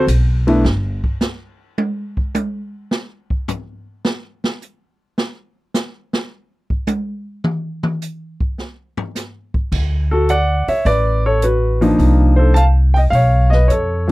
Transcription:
0.07 B1, hi-hat pedal, ride
0.47 A3 B3 D4 E4, ride
0.64 G1, snare
1.04 kick
1.21 snare, hi-hat pedal
1.78 high tom
2.17 kick
2.35 hi-hat pedal, high tom
2.91 snare
3.30 kick
3.48 floor tom, hi-hat pedal
4.05 snare
4.44 snare
4.62 hi-hat pedal
5.18 snare
5.74 snare, hi-hat pedal
6.13 snare
6.70 kick
6.87 hi-hat pedal, high tom
7.44 mid tom
7.83 mid tom
8.02 hi-hat pedal
8.40 kick
8.58 snare
8.97 floor tom
9.15 snare, hi-hat pedal
9.54 kick
9.72 D2, kick, crash
10.11 F#4 A4
10.29 D5 F#5, closed hi-hat
10.67 C#5 E5, muted upright bass stroke, open hi-hat
10.85 A1 B4 D5, open hi-hat
11.26 A4 C#5
11.42 F#4 B4, closed hi-hat
11.81 F3 A#3 D4 D#4, open hi-hat
11.99 C2, open hi-hat
12.36 A4 C5
12.54 F5 A5, closed hi-hat
12.94 D#5 G5, open hi-hat
13.10 B1 F5, open hi-hat
13.15 C#5
13.50 B4 D#5, snare
13.68 F2 A4 C#5, closed hi-hat
14.08 F3 A3

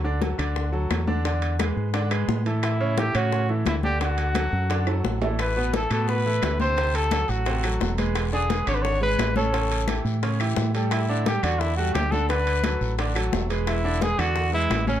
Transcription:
Already playing: D2
0.04 D3 D4 D5, high conga
0.21 F#3 F#4 A4, high bongo, high conga, high timbale
0.38 D2 D3 D4 D5, high conga, high timbale, claves
0.56 high bongo, high conga
0.72 F#3 F#4 A4, high conga
0.90 E2, high bongo, low bongo, high conga, high timbale, claves
1.07 D3 D4 D5, high conga
1.25 D3 D4 D5, high bongo, high conga, high timbale
1.42 high bongo, high conga, high timbale
1.59 G#3 G#4 B4, high bongo, high conga, high timbale, claves
1.76 G#2, high conga
1.94 D3 D4 D5, high bongo, high conga, high timbale
2.11 G#3 G#4 B4, high bongo, high conga, high timbale, claves
2.28 A2, high bongo, low bongo, high conga
2.46 E3 E4 A4, high bongo, high timbale
2.63 E4, high bongo, high conga, high timbale, claves
2.80 C#3 C#4 C#5, high conga
2.97 E3 E4 G4 A4, high bongo, high conga, high timbale
3.15 A2 C#3 C#4 F#4 C#5, high conga, high timbale, claves
3.32 high bongo, high conga
3.49 E3 E4 A4, high conga
3.66 D2 E4, high bongo, low bongo, high conga, high timbale, claves
3.83 D3 D4 G4 D5, high conga
4.01 D3 D4 F#4 D5, high bongo, high conga, high timbale
4.18 high bongo, high conga, high timbale
4.35 F#3 F#4 A4, high bongo, high conga, high timbale, claves
4.53 F#2, high conga
4.70 D3 D4 D5, high bongo, high conga, high timbale
4.87 F#3 F#4 A4, high bongo, high conga, high timbale, claves
5.04 A1, high bongo, low bongo, high conga
5.22 E3 E4 A4, high bongo, low timbale
5.39 B4, high bongo, high conga, high timbale, long guiro, claves
5.56 B2 B3 B4, high conga
5.73 E3 E4 A4, high bongo, high conga, high timbale, short guiro
5.90 A2 B2 B3 A4 B4, high conga, high timbale, short guiro, claves
6.08 B4, high bongo, high conga, long guiro
6.25 E3 E4 A4, high conga
6.42 D2, high bongo, low bongo, high conga, high timbale, low timbale, short guiro, claves
6.60 C3 C4 C5, high conga, short guiro
6.77 C3 C4 C5, high bongo, high conga, high timbale, long guiro
6.94 A4, high bongo, high conga, high timbale
7.11 F#3 F#4 A4, high bongo, high conga, high timbale, short guiro, claves
7.28 A1 F#4, high conga, short guiro
7.46 C3 C4 C5, high bongo, high conga, high timbale, long guiro
7.63 F#3 F#4 A4, high bongo, high conga, high timbale, claves
7.80 E1, high bongo, low bongo, high conga, short guiro
7.98 G#3 G#4 B4, high bongo, high conga, high timbale, short guiro
8.15 high bongo, high conga, high timbale, long guiro, claves
8.32 D3 D4 G#4 D5, high conga
8.49 G#3 G#4 B4, high bongo, high conga, high timbale, short guiro
8.67 G#1 D3 D4 C#5 D5, high conga, high timbale, short guiro, claves
8.75 B4
8.82 C#5, high bongo, high conga, long guiro
9.01 G#3 G#4 B4, high conga
9.18 A1, high bongo, low bongo, high conga, high timbale, low timbale, short guiro, claves
9.36 C#3 C#4 A4 C#5, high conga, short guiro
9.52 C#3 C#4 C#5, high bongo, high conga, high timbale, long guiro
9.71 high bongo, high conga, high timbale
9.87 E3 E4 G4, high bongo, high conga, high timbale, short guiro, claves
10.05 A2, high conga, short guiro
10.22 C#3 C#4 C#5, high bongo, high conga, high timbale, long guiro
10.40 E3 E4 G4, high bongo, high conga, high timbale, claves
10.56 A2, high bongo, low bongo, high conga, short guiro
10.74 G3 G4 A4, high bongo, high timbale, short guiro
10.91 E4, high bongo, high conga, high timbale, long guiro, claves
11.09 D3 D4 D5, high conga
11.26 G3 G4 A4, high bongo, high conga, high timbale, short guiro
11.43 E2 D3 D4 F#4 D5, high conga, high timbale, short guiro, claves
11.59 E4, high bongo, high conga, long guiro
11.77 G3 F#4 G4 A4, high conga
11.94 D2 G4, high bongo, low bongo, high conga, high timbale, low timbale, short guiro, claves
12.11 D3 D4 A4 D5, high conga, short guiro
12.29 D3 D4 B4 D5, high bongo, high conga, high timbale, long guiro
12.47 high bongo, high conga, high timbale
12.64 F#3 F#4 A4, high bongo, high conga, high timbale, short guiro, claves
12.81 A1, high conga, short guiro
12.98 D3 D4 D5, high bongo, high conga, high timbale, long guiro
13.15 F#3 F#4 A4, high bongo, high conga, high timbale, claves
13.33 E1, high bongo, low bongo, high conga, low timbale, short guiro
13.50 G#3 G#4 B4, high bongo, high timbale, short guiro
13.67 E4, high bongo, high conga, high timbale, long guiro, claves
13.84 D3 D4 D5, high conga
14.01 G#3 G#4 B4, high bongo, high conga, high timbale, short guiro
14.18 E2 D3 D4 F#4 D5, high conga, high timbale, short guiro, claves
14.36 high bongo, high conga, long guiro
14.53 G#3 E4 G#4 B4, high conga
14.70 A1, high bongo, low bongo, high conga, high timbale, short guiro, claves
14.87 C#3 C#4 C#5, high conga, short guiro

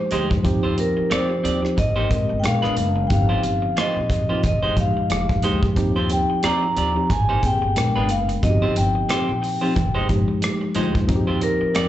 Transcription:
Already playing: F3 G#3 D#4 G4
0.11 D2 F3 G#3 D#4 G4 C5, closed hi-hat, high conga
0.30 muted clean electric guitar stroke, kick
0.43 D#2 F3 C4 D#4 G4, muted clean electric guitar stroke, kick, closed hi-hat, muted conga
0.63 C4 F4 G4 C5
0.77 A#4, muted clean electric guitar stroke, closed hi-hat, muted conga
0.97 muted clean electric guitar stroke, muted upright bass stroke
1.10 F2 C4 F4 G4 C5 D5, cross-stick, closed hi-hat, high conga
1.30 muted clean electric guitar stroke
1.44 D#2 C4 F4 G4 D5, closed hi-hat
1.62 F3 C4 D#4 G4, muted clean electric guitar stroke, cross-stick
1.77 G#1 D#5, muted clean electric guitar stroke, kick, closed hi-hat, muted conga
1.96 A#3 D#4 G4 C5
2.10 G#3 C4 G4 A#4, muted clean electric guitar stroke, kick, closed hi-hat, muted conga
2.29 G1, muted clean electric guitar stroke
2.40 G#3 B3 G5, muted clean electric guitar stroke, high conga
2.44 A#1 D4 A#4 F5, cross-stick, closed hi-hat
2.62 G#1 G#3 D4 F4 B4, cross-stick
2.76 F#1, closed hi-hat, high conga
2.96 muted clean electric guitar stroke
3.07 G1 F3 C4 D#4 G4 G5, muted clean electric guitar stroke, kick, closed hi-hat, muted conga
3.13 F5
3.29 A#3 F4 G4 C5
3.43 G1, muted clean electric guitar stroke, closed hi-hat, muted conga
3.62 muted clean electric guitar stroke
3.77 A#3 F4 G4 C5 D#5, muted upright bass stroke, cross-stick, closed hi-hat, high conga
3.96 A#1
4.10 muted clean electric guitar stroke, kick, closed hi-hat
4.29 F3 A#3 C4 D#4 F4 G4 C5
4.43 F1 D#5, muted clean electric guitar stroke, kick, closed hi-hat, muted conga, low conga
4.63 G#3 D#4 G4 C5
4.76 G1 F3 G#3 D#4 G4 F5, muted clean electric guitar stroke, kick, closed hi-hat, muted conga
4.97 muted clean electric guitar stroke
5.10 F1, cross-stick, closed hi-hat, high conga
5.29 muted clean electric guitar stroke, kick
5.42 D2 F3 G#3 D#4 G4 C5, closed hi-hat, high conga
5.63 muted clean electric guitar stroke, kick
5.76 D#2 F3 C4 D#4 G4, muted clean electric guitar stroke, kick, closed hi-hat, muted conga
5.96 C4 F4 G4 C5
6.10 G5, muted clean electric guitar stroke, closed hi-hat
6.30 muted clean electric guitar stroke, muted upright bass stroke
6.43 F2 C4 F4 G4 D5 A#5, cross-stick, closed hi-hat, high conga
6.63 muted clean electric guitar stroke
6.77 D#2 C4 F4 G4 D5, closed hi-hat
6.95 F3 C4 D#4 G4, muted clean electric guitar stroke
7.10 G#1 G#5, muted clean electric guitar stroke, kick, closed hi-hat, muted conga
7.29 A#3 D#4 G4 C5
7.42 A#3 C4 G4 G#4 G5, muted clean electric guitar stroke, kick, closed hi-hat, muted conga
7.62 G1, muted clean electric guitar stroke
7.76 A#1 G#3 B3 D4 A#4, muted clean electric guitar stroke, cross-stick, closed hi-hat, high conga
7.96 G#1 G#3 D4 F4 B4
8.09 F#1 F5, muted clean electric guitar stroke, closed hi-hat, high conga
8.29 muted clean electric guitar stroke, closed hi-hat
8.42 G1 F3 C4 D#4 F#4 D#5, muted clean electric guitar stroke, kick, closed hi-hat, muted conga
8.50 G4
8.62 C4 F4 G4 C5
8.76 G1 G5, muted clean electric guitar stroke, closed hi-hat
8.95 muted clean electric guitar stroke
9.09 C4 F4 G4 C5, muted upright bass stroke, cross-stick, closed hi-hat, high conga
9.29 A#1
9.42 muted clean electric guitar stroke, open hi-hat
9.61 F3 C4 D#4 F4 G4 C5
9.75 F1, muted clean electric guitar stroke, kick, closed hi-hat, muted conga, low conga
9.95 G#3 D#4 G4 C5
10.09 G1 F3 G#3 D#4 G4, kick, closed hi-hat, muted conga
10.28 muted clean electric guitar stroke
10.42 cross-stick, closed hi-hat, high conga
10.61 muted clean electric guitar stroke
10.75 D2 F3 G#3 D#4 F4 G4 C5, closed hi-hat, high conga
10.95 muted clean electric guitar stroke, kick
11.08 D#2 F3 C4 D#4 F#4, muted clean electric guitar stroke, kick, closed hi-hat, muted conga
11.16 G4
11.27 C4 F4 G4 C5
11.41 A#4, muted clean electric guitar stroke, closed hi-hat
11.61 muted clean electric guitar stroke, muted upright bass stroke
11.74 F2 C4 F4 G4 D5, cross-stick, closed hi-hat, high conga

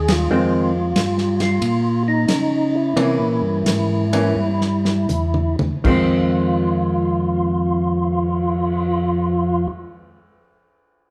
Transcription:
Already playing: D#2 G#4
0.08 F4, snare, ride
0.30 F2 D#3 G#3 C4
0.96 G2, snare, hi-hat pedal, ride
1.18 snare
1.40 F4, snare, ride
1.61 A#2, ride
2.08 D#4
2.28 C#3, snare, hi-hat pedal, ride
2.75 E4
2.96 C3 E3 A#3 C#4, ride
3.19 A#2
3.42 G2
3.65 G#2, snare, hi-hat pedal, ride
4.13 E3 A#3 C#4, ride
4.36 G2
4.61 snare
4.85 snare
5.09 E2, hi-hat pedal, high tom
5.34 high tom
5.59 E2, high tom
5.84 F2 D#3 G#3 C4 F4, kick, crash
6.36 cymbal swell

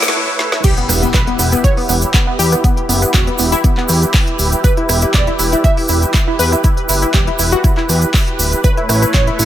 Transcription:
Already playing: A3 E4 B4 C#5 E6, riser
0.02 snare, closed hi-hat, shaker
0.08 snare
0.39 snare
0.52 snare
0.64 E4 G4 B4, kick, closed hi-hat, crash, impact, shaker
0.77 B3, closed hi-hat
0.89 E1 B3, cross-stick, open hi-hat, shaker
1.02 B3, closed hi-hat, shaker
1.14 E1 B4, kick, clap, closed hi-hat, shaker
1.27 B3, closed hi-hat
1.39 E1 B3, open hi-hat, shaker
1.52 B3, closed hi-hat, shaker
1.64 C#5, kick, closed hi-hat, shaker
1.77 B3, open hi-hat
1.89 E1 B3, open hi-hat, shaker
2.02 closed hi-hat, shaker
2.14 B3, kick, clap, closed hi-hat, shaker
2.27 B3
2.39 E2 G4, open hi-hat, shaker
2.52 B3, cross-stick, closed hi-hat, shaker
2.64 B3, kick, closed hi-hat, shaker
2.77 closed hi-hat
2.89 F#1 B3, open hi-hat, shaker
3.02 B3, closed hi-hat, shaker
3.14 E1 F#4, kick, clap, closed hi-hat, shaker
3.27 B3, closed hi-hat
3.38 E1 B3, open hi-hat, shaker
3.52 E4, closed hi-hat, shaker
3.64 B3, kick, closed hi-hat, shaker
3.77 B3, clap
3.88 E2, cross-stick, open hi-hat, shaker
4.02 closed hi-hat, shaker
4.13 kick, clap, open hi-hat, shaker
4.27 closed hi-hat
4.39 D1, open hi-hat, shaker
4.52 closed hi-hat, shaker
4.64 B4, kick, closed hi-hat, shaker
4.77 E4, closed hi-hat
4.89 E1 E4, cross-stick, open hi-hat, shaker
5.02 E4, closed hi-hat, shaker
5.14 E1 D5, kick, clap, closed hi-hat, shaker
5.27 E4, closed hi-hat
5.39 E1 E4, open hi-hat, shaker
5.52 E4, closed hi-hat, shaker
5.64 E5, kick, closed hi-hat, shaker
5.77 E4, open hi-hat
5.88 E1 E4, open hi-hat, shaker
6.02 closed hi-hat, shaker
6.14 E4, kick, clap, closed hi-hat, shaker
6.27 E4
6.39 E2 B4, open hi-hat, shaker
6.52 E4, cross-stick, closed hi-hat, shaker
6.64 E4, kick, closed hi-hat, shaker
6.77 closed hi-hat
6.89 F#1 E4, open hi-hat, shaker
7.02 E4, closed hi-hat, shaker
7.14 E1 G4, kick, clap, closed hi-hat, shaker
7.27 E4, closed hi-hat
7.39 E1 E4, open hi-hat, shaker
7.52 F#4, closed hi-hat, shaker
7.64 E4, kick, closed hi-hat, shaker
7.77 E4, clap
7.89 E2, cross-stick, open hi-hat, shaker
8.02 closed hi-hat, shaker
8.14 kick, clap, open hi-hat, shaker
8.27 closed hi-hat
8.39 D1, open hi-hat, shaker
8.52 closed hi-hat, shaker
8.64 A3 E4 B4 C#5, kick, closed hi-hat, shaker
8.77 E4, closed hi-hat
8.89 A1 E4, cross-stick, open hi-hat, shaker
9.02 E4, closed hi-hat, shaker
9.14 A1 C#5, kick, clap, closed hi-hat, shaker
9.27 E4, closed hi-hat
9.39 A1 E4, open hi-hat, shaker

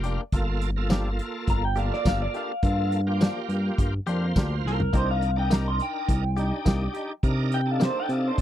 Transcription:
Already playing: F1 A#3 F4 G4
0.04 A#3 D4 G4, closed hi-hat
0.32 G1 A#3 F4 A4, kick, closed hi-hat
0.62 closed hi-hat
0.76 A#3 F4 A4
0.90 F3 A#3 D4 G4, snare, closed hi-hat, tambourine
1.19 closed hi-hat
1.47 G1 A#5, kick, closed hi-hat
1.65 G5
1.76 A#3 D4 F4 G4 A4 F5, closed hi-hat
1.93 D5, snare
2.05 G1 F3 A#3 D4 G4 F5, kick, snare, closed hi-hat, tambourine
2.22 D5
2.34 A#3 D4 G4 F5, closed hi-hat
2.63 G2 A#3 F4 A4, kick, closed hi-hat
2.92 closed hi-hat
3.07 A#3 F4 G4
3.21 F3 A#3 D4 G4, snare, closed hi-hat, tambourine
3.49 G2, closed hi-hat
3.78 G1, kick, closed hi-hat
4.06 F2 A#3 D4 F4 G4 C5, closed hi-hat
4.36 D2 F3 A#3 D4 G4, kick, snare, closed hi-hat, tambourine
4.64 C2 A#4, snare
4.80 floor tom
4.93 C2 A#3 D4 D#4 G4 A#4 C5, kick, closed hi-hat
5.11 F5
5.22 closed hi-hat
5.36 D4 D#4 A#4 G5
5.51 A#3 D#4 G4 A#5, snare, closed hi-hat, tambourine
5.68 C6
5.80 G5, closed hi-hat
6.09 C2, kick, closed hi-hat
6.37 D4 D#4 G4, closed hi-hat
6.65 C2 A#3 D#4 G4, kick, snare, closed hi-hat, tambourine
6.94 D#4 G4, closed hi-hat
7.23 C3 D4 D#4 A#4, kick, closed hi-hat
7.52 G5, closed hi-hat
7.66 D4 D#4 A4
7.71 F5
7.80 A#3 D#4 G4, snare, closed hi-hat, tambourine
7.84 C5
8.00 G5
8.09 C3 F5, closed hi-hat
8.28 C5
8.38 C2, kick, closed hi-hat

